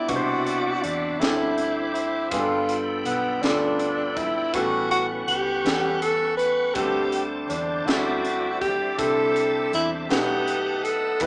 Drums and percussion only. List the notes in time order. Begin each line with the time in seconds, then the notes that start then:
0.09 kick, closed hi-hat
0.47 closed hi-hat
0.84 closed hi-hat
1.22 snare, closed hi-hat
1.58 closed hi-hat
1.95 closed hi-hat
2.31 kick, closed hi-hat
2.69 closed hi-hat
3.05 closed hi-hat
3.43 snare, closed hi-hat
3.80 closed hi-hat
4.17 kick, closed hi-hat
4.54 kick, closed hi-hat
4.91 closed hi-hat
5.28 closed hi-hat
5.66 snare, closed hi-hat
6.02 closed hi-hat
6.39 closed hi-hat
6.75 kick, closed hi-hat
7.12 closed hi-hat
7.50 closed hi-hat
7.88 snare, closed hi-hat
8.25 closed hi-hat
8.62 kick, closed hi-hat
8.99 kick, closed hi-hat
9.36 closed hi-hat
9.73 closed hi-hat
10.10 snare, closed hi-hat
10.48 closed hi-hat
10.85 closed hi-hat
11.20 kick, closed hi-hat